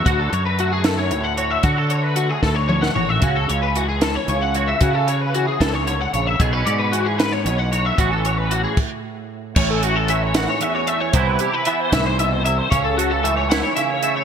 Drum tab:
CC |------------|------------|------------|------------|
HH |x-x-x-x-x-x-|x-x-x-------|x-x-x-x-x-x-|x-x-x-x-x-x-|
SD |------o-----|------o--o--|------o-----|------o-----|
T2 |------------|--------o---|------------|------------|
FT |------------|----------o-|------------|------------|
BD |o-----------|o-----o-----|o-----------|o-----o-----|

CC |------------|------x-----|x-----------|------------|
HH |x-x-x-x-x-x-|x-x-x-------|--x-x-x-x-x-|x-x-x-x-x-x-|
SD |------o-----|------------|------o-----|------o-----|
T2 |------------|------------|------------|------------|
FT |------------|------------|------------|------------|
BD |o-----------|o-----o-----|o-----------|o-----o-----|

CC |------------|
HH |x-x-x-x-x-x-|
SD |------o-----|
T2 |------------|
FT |------------|
BD |o-----------|